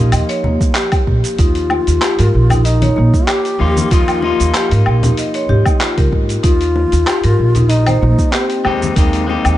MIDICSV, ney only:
0, 0, Header, 1, 2, 480
1, 0, Start_track
1, 0, Key_signature, -3, "major"
1, 0, Tempo, 631579
1, 1055, Time_signature, 4, 2, 24, 8
1, 7279, End_track
2, 0, Start_track
2, 0, Title_t, "Ney"
2, 0, Program_c, 0, 77
2, 1050, Note_on_c, 0, 65, 102
2, 2011, Note_on_c, 0, 63, 93
2, 2022, Note_off_c, 0, 65, 0
2, 2490, Note_on_c, 0, 67, 111
2, 2501, Note_off_c, 0, 63, 0
2, 2975, Note_on_c, 0, 65, 100
2, 2987, Note_off_c, 0, 67, 0
2, 3455, Note_off_c, 0, 65, 0
2, 4892, Note_on_c, 0, 65, 124
2, 5845, Note_on_c, 0, 63, 99
2, 5857, Note_off_c, 0, 65, 0
2, 6321, Note_on_c, 0, 60, 87
2, 6332, Note_off_c, 0, 63, 0
2, 6810, Note_on_c, 0, 58, 84
2, 6821, Note_off_c, 0, 60, 0
2, 7279, Note_off_c, 0, 58, 0
2, 7279, End_track
0, 0, End_of_file